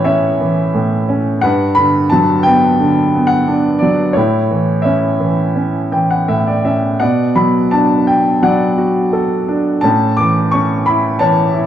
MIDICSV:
0, 0, Header, 1, 2, 480
1, 0, Start_track
1, 0, Tempo, 686499
1, 1003, Time_signature, 4, 2, 24, 8
1, 3397, Tempo, 710900
1, 6757, Tempo, 677966
1, 8052, End_track
2, 0, Start_track
2, 0, Title_t, "Upright piano"
2, 0, Program_c, 0, 0
2, 0, Control_c, 0, 64, 127
2, 0, Note_on_c, 0, 45, 46
2, 0, Note_on_c, 0, 52, 41
2, 0, Note_on_c, 0, 61, 39
2, 0, Note_on_c, 0, 64, 42
2, 0, Note_on_c, 0, 73, 62
2, 0, Note_on_c, 0, 76, 60
2, 31, Note_off_c, 0, 76, 0
2, 31, Note_on_c, 0, 76, 59
2, 36, Note_off_c, 0, 61, 0
2, 36, Note_off_c, 0, 73, 0
2, 36, Note_on_c, 0, 61, 40
2, 36, Note_on_c, 0, 73, 44
2, 270, Note_off_c, 0, 52, 0
2, 280, Note_on_c, 0, 52, 40
2, 509, Note_off_c, 0, 45, 0
2, 520, Note_on_c, 0, 45, 43
2, 730, Note_off_c, 0, 76, 0
2, 751, Note_off_c, 0, 61, 0
2, 761, Note_on_c, 0, 61, 42
2, 975, Note_off_c, 0, 73, 0
2, 982, Note_off_c, 0, 52, 0
2, 988, Note_off_c, 0, 45, 0
2, 989, Note_on_c, 0, 78, 73
2, 996, Note_off_c, 0, 61, 0
2, 1003, Note_on_c, 0, 43, 47
2, 1004, Note_on_c, 0, 71, 52
2, 1012, Control_c, 0, 64, 0
2, 1019, Note_off_c, 0, 64, 0
2, 1132, Control_c, 0, 64, 127
2, 1222, Note_on_c, 0, 83, 74
2, 1245, Note_off_c, 0, 78, 0
2, 1245, Note_on_c, 0, 50, 40
2, 1465, Note_on_c, 0, 81, 66
2, 1481, Note_off_c, 0, 83, 0
2, 1483, Note_on_c, 0, 54, 43
2, 1700, Note_on_c, 0, 79, 72
2, 1721, Note_off_c, 0, 81, 0
2, 1724, Note_on_c, 0, 59, 43
2, 1931, Note_off_c, 0, 71, 0
2, 1948, Note_off_c, 0, 50, 0
2, 1959, Note_on_c, 0, 50, 43
2, 2189, Note_off_c, 0, 59, 0
2, 2200, Note_on_c, 0, 59, 42
2, 2286, Note_on_c, 0, 78, 70
2, 2321, Note_off_c, 0, 79, 0
2, 2406, Note_off_c, 0, 54, 0
2, 2431, Note_on_c, 0, 62, 42
2, 2647, Note_on_c, 0, 74, 51
2, 2673, Note_off_c, 0, 78, 0
2, 2673, Note_on_c, 0, 54, 40
2, 2888, Note_off_c, 0, 43, 0
2, 2888, Note_off_c, 0, 50, 0
2, 2889, Note_on_c, 0, 73, 54
2, 2897, Note_off_c, 0, 59, 0
2, 2899, Note_off_c, 0, 62, 0
2, 2907, Note_off_c, 0, 54, 0
2, 2909, Note_off_c, 0, 74, 0
2, 2912, Note_on_c, 0, 45, 41
2, 2913, Note_on_c, 0, 64, 43
2, 2924, Control_c, 0, 64, 0
2, 3045, Control_c, 0, 64, 127
2, 3152, Note_on_c, 0, 52, 38
2, 3356, Note_off_c, 0, 73, 0
2, 3369, Note_on_c, 0, 76, 47
2, 3390, Note_on_c, 0, 73, 34
2, 3392, Note_on_c, 0, 61, 40
2, 3616, Note_off_c, 0, 52, 0
2, 3626, Note_on_c, 0, 52, 39
2, 3846, Note_off_c, 0, 64, 0
2, 3860, Note_off_c, 0, 61, 0
2, 3870, Note_on_c, 0, 61, 35
2, 4076, Note_off_c, 0, 76, 0
2, 4102, Note_off_c, 0, 52, 0
2, 4112, Note_on_c, 0, 52, 35
2, 4115, Note_on_c, 0, 79, 42
2, 4229, Note_off_c, 0, 79, 0
2, 4238, Note_on_c, 0, 78, 44
2, 4330, Note_off_c, 0, 73, 0
2, 4350, Note_off_c, 0, 45, 0
2, 4352, Note_off_c, 0, 78, 0
2, 4359, Note_on_c, 0, 76, 45
2, 4360, Note_on_c, 0, 45, 37
2, 4473, Note_off_c, 0, 76, 0
2, 4483, Note_on_c, 0, 74, 42
2, 4594, Note_off_c, 0, 61, 0
2, 4596, Note_off_c, 0, 74, 0
2, 4605, Note_on_c, 0, 61, 36
2, 4605, Note_on_c, 0, 76, 42
2, 4822, Note_off_c, 0, 52, 0
2, 4830, Note_off_c, 0, 76, 0
2, 4831, Note_off_c, 0, 45, 0
2, 4839, Note_off_c, 0, 61, 0
2, 4840, Note_on_c, 0, 78, 57
2, 4843, Note_on_c, 0, 47, 40
2, 4851, Note_on_c, 0, 74, 40
2, 4855, Control_c, 0, 64, 0
2, 4980, Control_c, 0, 64, 127
2, 5083, Note_on_c, 0, 54, 39
2, 5083, Note_on_c, 0, 83, 64
2, 5092, Note_off_c, 0, 78, 0
2, 5324, Note_on_c, 0, 81, 58
2, 5329, Note_on_c, 0, 62, 37
2, 5335, Note_off_c, 0, 83, 0
2, 5567, Note_on_c, 0, 79, 55
2, 5575, Note_off_c, 0, 81, 0
2, 5783, Note_off_c, 0, 74, 0
2, 5789, Note_off_c, 0, 79, 0
2, 5795, Note_off_c, 0, 54, 0
2, 5805, Note_on_c, 0, 54, 39
2, 5808, Note_on_c, 0, 78, 57
2, 5813, Note_on_c, 0, 74, 42
2, 6045, Note_on_c, 0, 66, 38
2, 6136, Note_off_c, 0, 78, 0
2, 6251, Note_off_c, 0, 62, 0
2, 6281, Note_on_c, 0, 69, 40
2, 6519, Note_on_c, 0, 62, 40
2, 6728, Note_off_c, 0, 47, 0
2, 6728, Note_off_c, 0, 54, 0
2, 6732, Note_off_c, 0, 74, 0
2, 6736, Note_off_c, 0, 66, 0
2, 6741, Note_on_c, 0, 81, 66
2, 6743, Note_off_c, 0, 69, 0
2, 6751, Note_off_c, 0, 62, 0
2, 6754, Note_on_c, 0, 61, 47
2, 6761, Note_on_c, 0, 45, 47
2, 6765, Control_c, 0, 64, 0
2, 6910, Control_c, 0, 64, 127
2, 6992, Note_on_c, 0, 86, 68
2, 7006, Note_off_c, 0, 81, 0
2, 7013, Note_on_c, 0, 52, 39
2, 7238, Note_on_c, 0, 85, 64
2, 7243, Note_off_c, 0, 61, 0
2, 7250, Note_off_c, 0, 86, 0
2, 7254, Note_on_c, 0, 61, 41
2, 7482, Note_on_c, 0, 83, 65
2, 7490, Note_off_c, 0, 85, 0
2, 7494, Note_on_c, 0, 64, 44
2, 7705, Note_off_c, 0, 83, 0
2, 7718, Note_on_c, 0, 81, 64
2, 7719, Note_off_c, 0, 52, 0
2, 7728, Note_on_c, 0, 73, 47
2, 7730, Note_on_c, 0, 52, 42
2, 7953, Note_off_c, 0, 64, 0
2, 7964, Note_on_c, 0, 64, 43
2, 8048, Note_off_c, 0, 81, 0
2, 8052, Note_off_c, 0, 45, 0
2, 8052, Note_off_c, 0, 52, 0
2, 8052, Note_off_c, 0, 61, 0
2, 8052, Note_off_c, 0, 64, 0
2, 8052, Note_off_c, 0, 73, 0
2, 8052, End_track
0, 0, End_of_file